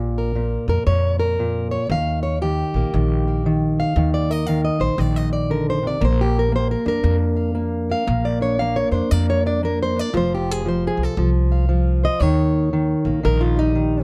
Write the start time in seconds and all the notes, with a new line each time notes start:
Already playing: A#1 A#2
0.18 A#4
0.35 A#2
0.68 F2 A#4
0.87 F2 A#2 C#5
1.20 A#4
1.39 A#2
1.71 C#5
1.90 D#2 D#3 F5
2.23 C#5
2.41 D#3 G4
2.74 A#1 A#3
2.94 A#1 D#3
3.28 A#3
3.46 D#3
3.80 F5
3.96 D#2 D#3
4.14 D5
4.30 A#4 D#5
4.47 D#3 F5
4.65 D#5
4.80 A#1 C5
4.98 A#1 D#3 D5
5.16 D#5
5.33 D5
5.50 D3 A#4
5.70 C5
5.83 C3
5.87 D5
6.01 A#1 A#3 C5
6.21 G4
6.39 A#4
6.52 A#3 C5
6.71 A#4
6.86 F2 D4 A#4
7.03 F2 A#3
7.36 F5
7.55 A#3
7.90 A#4 F5
8.07 A#1 A#3
8.25 D5
8.41 D4 C#5
8.59 A#3 F5
8.76 C#5
8.92 F2 D4 C5
9.11 F2 A#3 D5
9.30 C#5
9.46 D4 D5
9.63 A#3 A#4
9.83 C5
9.96 D4 D5
10.13 F1 F3 F4 C5
10.35 G4
10.51 G#4
10.65 F3 C5
10.87 G#4
10.97 C2
11.03 A4
11.17 C2 F3
11.52 F5
11.69 F3
12.04 C5 D#5
12.20 D#2 D#3 C#5
12.73 D#3
13.05 A#1 A#3
13.23 A#1 D#3 A#4
13.41 F4
13.57 G3 D#4
13.75 D#3